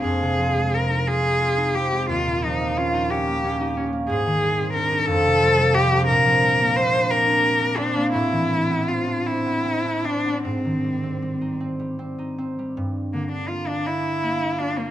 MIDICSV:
0, 0, Header, 1, 3, 480
1, 0, Start_track
1, 0, Tempo, 684932
1, 25, Time_signature, 6, 3, 24, 8
1, 1944, Tempo, 661521
1, 3864, Tempo, 679502
1, 5784, Tempo, 756620
1, 6744, Tempo, 777202
1, 8664, Tempo, 731707
1, 10074, End_track
2, 0, Start_track
2, 0, Title_t, "Cello"
2, 0, Program_c, 0, 42
2, 29, Note_on_c, 0, 68, 80
2, 520, Note_on_c, 0, 70, 76
2, 530, Note_off_c, 0, 68, 0
2, 754, Note_on_c, 0, 68, 92
2, 765, Note_off_c, 0, 70, 0
2, 1227, Note_on_c, 0, 67, 91
2, 1238, Note_off_c, 0, 68, 0
2, 1467, Note_off_c, 0, 67, 0
2, 1471, Note_on_c, 0, 65, 85
2, 1710, Note_on_c, 0, 63, 75
2, 1721, Note_off_c, 0, 65, 0
2, 1948, Note_on_c, 0, 65, 83
2, 1959, Note_off_c, 0, 63, 0
2, 2189, Note_on_c, 0, 67, 80
2, 2200, Note_off_c, 0, 65, 0
2, 2663, Note_off_c, 0, 67, 0
2, 2898, Note_on_c, 0, 68, 95
2, 3350, Note_off_c, 0, 68, 0
2, 3369, Note_on_c, 0, 70, 90
2, 3606, Note_on_c, 0, 69, 114
2, 3617, Note_off_c, 0, 70, 0
2, 4091, Note_on_c, 0, 67, 99
2, 4102, Note_off_c, 0, 69, 0
2, 4324, Note_off_c, 0, 67, 0
2, 4328, Note_on_c, 0, 70, 93
2, 4815, Note_on_c, 0, 72, 99
2, 4826, Note_off_c, 0, 70, 0
2, 5052, Note_on_c, 0, 70, 93
2, 5063, Note_off_c, 0, 72, 0
2, 5528, Note_on_c, 0, 62, 97
2, 5539, Note_off_c, 0, 70, 0
2, 5775, Note_off_c, 0, 62, 0
2, 5779, Note_on_c, 0, 64, 91
2, 6259, Note_on_c, 0, 65, 71
2, 6269, Note_off_c, 0, 64, 0
2, 6500, Note_on_c, 0, 64, 80
2, 6509, Note_off_c, 0, 65, 0
2, 6994, Note_on_c, 0, 62, 82
2, 7004, Note_off_c, 0, 64, 0
2, 7233, Note_off_c, 0, 62, 0
2, 7236, Note_on_c, 0, 60, 65
2, 7934, Note_off_c, 0, 60, 0
2, 8907, Note_on_c, 0, 58, 56
2, 9017, Note_off_c, 0, 58, 0
2, 9030, Note_on_c, 0, 62, 63
2, 9138, Note_on_c, 0, 65, 60
2, 9148, Note_off_c, 0, 62, 0
2, 9266, Note_on_c, 0, 62, 68
2, 9275, Note_off_c, 0, 65, 0
2, 9390, Note_on_c, 0, 64, 78
2, 9399, Note_off_c, 0, 62, 0
2, 9863, Note_on_c, 0, 62, 80
2, 9873, Note_off_c, 0, 64, 0
2, 9994, Note_on_c, 0, 58, 64
2, 10004, Note_off_c, 0, 62, 0
2, 10074, Note_off_c, 0, 58, 0
2, 10074, End_track
3, 0, Start_track
3, 0, Title_t, "Harp"
3, 0, Program_c, 1, 46
3, 0, Note_on_c, 1, 60, 53
3, 28, Note_on_c, 1, 41, 55
3, 153, Note_on_c, 1, 48, 42
3, 271, Note_on_c, 1, 53, 35
3, 390, Note_on_c, 1, 56, 43
3, 501, Note_off_c, 1, 60, 0
3, 509, Note_on_c, 1, 60, 37
3, 629, Note_on_c, 1, 63, 44
3, 752, Note_on_c, 1, 65, 53
3, 859, Note_off_c, 1, 63, 0
3, 868, Note_on_c, 1, 63, 47
3, 980, Note_off_c, 1, 65, 0
3, 989, Note_on_c, 1, 65, 59
3, 1097, Note_off_c, 1, 63, 0
3, 1105, Note_on_c, 1, 63, 49
3, 1218, Note_off_c, 1, 60, 0
3, 1226, Note_on_c, 1, 60, 55
3, 1336, Note_off_c, 1, 56, 0
3, 1344, Note_on_c, 1, 56, 49
3, 1465, Note_on_c, 1, 39, 62
3, 1486, Note_off_c, 1, 56, 0
3, 1488, Note_off_c, 1, 41, 0
3, 1489, Note_off_c, 1, 60, 0
3, 1490, Note_off_c, 1, 48, 0
3, 1586, Note_on_c, 1, 46, 45
3, 1701, Note_off_c, 1, 53, 0
3, 1709, Note_on_c, 1, 53, 43
3, 1824, Note_on_c, 1, 58, 57
3, 1941, Note_on_c, 1, 61, 49
3, 2052, Note_off_c, 1, 63, 0
3, 2060, Note_on_c, 1, 63, 54
3, 2179, Note_off_c, 1, 61, 0
3, 2188, Note_on_c, 1, 61, 55
3, 2297, Note_off_c, 1, 58, 0
3, 2305, Note_on_c, 1, 58, 47
3, 2418, Note_off_c, 1, 61, 0
3, 2427, Note_on_c, 1, 61, 55
3, 2539, Note_off_c, 1, 63, 0
3, 2548, Note_on_c, 1, 63, 58
3, 2657, Note_off_c, 1, 61, 0
3, 2665, Note_on_c, 1, 61, 60
3, 2772, Note_off_c, 1, 58, 0
3, 2781, Note_on_c, 1, 58, 47
3, 2902, Note_on_c, 1, 44, 67
3, 2917, Note_off_c, 1, 39, 0
3, 2917, Note_off_c, 1, 46, 0
3, 2919, Note_off_c, 1, 53, 0
3, 2919, Note_off_c, 1, 58, 0
3, 2921, Note_off_c, 1, 61, 0
3, 2922, Note_off_c, 1, 65, 0
3, 3024, Note_on_c, 1, 51, 54
3, 3144, Note_on_c, 1, 55, 49
3, 3260, Note_on_c, 1, 60, 49
3, 3381, Note_on_c, 1, 62, 49
3, 3489, Note_off_c, 1, 63, 0
3, 3498, Note_on_c, 1, 63, 56
3, 3616, Note_on_c, 1, 41, 64
3, 3640, Note_off_c, 1, 63, 0
3, 3643, Note_off_c, 1, 44, 0
3, 3644, Note_off_c, 1, 51, 0
3, 3737, Note_on_c, 1, 48, 48
3, 3861, Note_on_c, 1, 53, 60
3, 3971, Note_off_c, 1, 55, 0
3, 3979, Note_on_c, 1, 55, 55
3, 4094, Note_off_c, 1, 60, 0
3, 4103, Note_on_c, 1, 60, 62
3, 4215, Note_off_c, 1, 62, 0
3, 4223, Note_on_c, 1, 62, 58
3, 4339, Note_on_c, 1, 46, 80
3, 4356, Note_off_c, 1, 41, 0
3, 4356, Note_off_c, 1, 48, 0
3, 4446, Note_off_c, 1, 53, 0
3, 4454, Note_on_c, 1, 53, 52
3, 4571, Note_off_c, 1, 55, 0
3, 4579, Note_on_c, 1, 55, 54
3, 4698, Note_on_c, 1, 58, 59
3, 4811, Note_off_c, 1, 60, 0
3, 4820, Note_on_c, 1, 60, 49
3, 4924, Note_off_c, 1, 62, 0
3, 4932, Note_on_c, 1, 62, 54
3, 5053, Note_on_c, 1, 67, 65
3, 5170, Note_off_c, 1, 62, 0
3, 5178, Note_on_c, 1, 62, 54
3, 5282, Note_off_c, 1, 67, 0
3, 5291, Note_on_c, 1, 67, 62
3, 5399, Note_off_c, 1, 62, 0
3, 5408, Note_on_c, 1, 62, 59
3, 5521, Note_off_c, 1, 60, 0
3, 5529, Note_on_c, 1, 60, 65
3, 5648, Note_off_c, 1, 58, 0
3, 5657, Note_on_c, 1, 58, 51
3, 5787, Note_on_c, 1, 45, 73
3, 5801, Note_off_c, 1, 53, 0
3, 5803, Note_off_c, 1, 46, 0
3, 5804, Note_off_c, 1, 58, 0
3, 5902, Note_on_c, 1, 52, 57
3, 6009, Note_off_c, 1, 55, 0
3, 6017, Note_on_c, 1, 55, 40
3, 6137, Note_on_c, 1, 59, 46
3, 6246, Note_off_c, 1, 60, 0
3, 6254, Note_on_c, 1, 60, 44
3, 6366, Note_off_c, 1, 62, 0
3, 6373, Note_on_c, 1, 62, 47
3, 6488, Note_off_c, 1, 60, 0
3, 6496, Note_on_c, 1, 60, 50
3, 6613, Note_off_c, 1, 59, 0
3, 6620, Note_on_c, 1, 59, 42
3, 6734, Note_off_c, 1, 60, 0
3, 6742, Note_on_c, 1, 60, 51
3, 6857, Note_off_c, 1, 62, 0
3, 6865, Note_on_c, 1, 62, 53
3, 6979, Note_off_c, 1, 60, 0
3, 6987, Note_on_c, 1, 60, 53
3, 7106, Note_off_c, 1, 59, 0
3, 7113, Note_on_c, 1, 59, 41
3, 7237, Note_on_c, 1, 44, 53
3, 7255, Note_off_c, 1, 62, 0
3, 7256, Note_off_c, 1, 52, 0
3, 7256, Note_off_c, 1, 59, 0
3, 7257, Note_off_c, 1, 45, 0
3, 7361, Note_on_c, 1, 51, 39
3, 7472, Note_off_c, 1, 55, 0
3, 7479, Note_on_c, 1, 55, 38
3, 7591, Note_off_c, 1, 60, 0
3, 7598, Note_on_c, 1, 60, 41
3, 7707, Note_off_c, 1, 55, 0
3, 7715, Note_on_c, 1, 55, 42
3, 7787, Note_off_c, 1, 67, 0
3, 7832, Note_on_c, 1, 63, 36
3, 7943, Note_off_c, 1, 60, 0
3, 7950, Note_on_c, 1, 60, 40
3, 8060, Note_off_c, 1, 55, 0
3, 8068, Note_on_c, 1, 55, 40
3, 8180, Note_off_c, 1, 60, 0
3, 8188, Note_on_c, 1, 60, 43
3, 8301, Note_off_c, 1, 63, 0
3, 8308, Note_on_c, 1, 63, 44
3, 8424, Note_off_c, 1, 60, 0
3, 8432, Note_on_c, 1, 60, 46
3, 8550, Note_off_c, 1, 55, 0
3, 8557, Note_on_c, 1, 55, 38
3, 8671, Note_on_c, 1, 43, 51
3, 8684, Note_off_c, 1, 44, 0
3, 8684, Note_off_c, 1, 63, 0
3, 8685, Note_off_c, 1, 51, 0
3, 8685, Note_off_c, 1, 60, 0
3, 8909, Note_on_c, 1, 50, 36
3, 9149, Note_on_c, 1, 58, 39
3, 9388, Note_on_c, 1, 62, 39
3, 9620, Note_off_c, 1, 58, 0
3, 9628, Note_on_c, 1, 58, 41
3, 9870, Note_on_c, 1, 65, 45
3, 10074, Note_off_c, 1, 43, 0
3, 10074, Note_off_c, 1, 50, 0
3, 10074, Note_off_c, 1, 55, 0
3, 10074, Note_off_c, 1, 58, 0
3, 10074, Note_off_c, 1, 62, 0
3, 10074, Note_off_c, 1, 65, 0
3, 10074, End_track
0, 0, End_of_file